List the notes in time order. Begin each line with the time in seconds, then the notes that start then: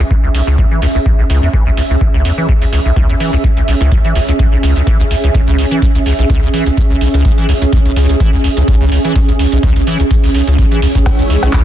Already playing: C#4 G#4 E5
0.11 C#2, kick
0.24 C#2
0.35 B1, open hi-hat
0.47 C#2
0.58 E2, kick
0.71 E3
0.82 C#2, open hi-hat
0.95 C#2
1.06 C#2, kick
1.19 B1
1.30 C#2, open hi-hat
1.43 E2
1.54 E3, kick
1.67 C#2
1.77 C#2, open hi-hat
1.90 C#2
2.01 B1, kick
2.14 C#2
2.25 E2, open hi-hat
2.38 E3
2.49 C#2, kick
2.62 C#2, open hi-hat
2.73 C#2, open hi-hat
2.85 B1
2.96 C#2, kick
3.09 E2
3.20 E3, open hi-hat
3.33 C#2
3.44 C#2, kick, closed hi-hat
3.57 C#2, closed hi-hat
3.68 B1, open hi-hat
3.81 C#2, closed hi-hat
3.92 kick, closed hi-hat
4.05 E3, closed hi-hat
4.15 C#2, open hi-hat
4.28 C#2, closed hi-hat
4.39 C#2, kick, closed hi-hat
4.52 B1
4.63 C#2, open hi-hat
4.76 C#2, closed hi-hat
4.87 E3, kick, closed hi-hat
5.00 C#2
5.11 C#2, open hi-hat
5.24 C#2, closed hi-hat
5.35 B1, kick, closed hi-hat
5.48 C#2, closed hi-hat
5.58 C#2, open hi-hat
5.71 E3, closed hi-hat
5.82 C#2, kick, closed hi-hat
5.95 C#2, closed hi-hat
6.06 C#2, open hi-hat
6.19 B1, closed hi-hat
6.30 C#2, kick, closed hi-hat
6.43 C#2
6.54 E3, open hi-hat
6.66 C#2, closed hi-hat
6.77 C#2, kick, closed hi-hat
6.90 C#2
7.01 B1, open hi-hat
7.14 C#2, closed hi-hat
7.25 kick, closed hi-hat
7.38 E3, closed hi-hat
7.49 C#2, open hi-hat
7.62 C#2, closed hi-hat
7.73 C#2, kick, closed hi-hat
7.85 B1, closed hi-hat
7.96 C#2, open hi-hat
8.09 C#2, closed hi-hat
8.20 E3, kick, closed hi-hat
8.33 C#2
8.44 C#2, open hi-hat
8.57 C#2, closed hi-hat
8.68 B1, kick, closed hi-hat
8.81 C#2
8.92 C#2, open hi-hat
9.05 E3, closed hi-hat
9.16 C#2, kick, closed hi-hat
9.28 C#2, closed hi-hat
9.39 C#2, open hi-hat
9.52 B1, closed hi-hat
9.63 C#2, kick, closed hi-hat
9.76 C#2, closed hi-hat
9.87 E3, open hi-hat
10.00 C#2, closed hi-hat
10.11 C#2, kick, closed hi-hat
10.24 C#2, open hi-hat
10.34 B1, open hi-hat
10.47 C#2, closed hi-hat
10.58 kick, closed hi-hat
10.71 E3, closed hi-hat
10.82 C#2, open hi-hat
10.95 C#2, kick, closed hi-hat
11.06 C#2 G#3 E4 C#5 E5, kick, closed hi-hat, crash, cowbell
11.19 C#2, closed hi-hat
11.30 C#2, open hi-hat
11.38 D#6
11.43 B1, closed hi-hat, cowbell
11.53 C#2, kick, clap, closed hi-hat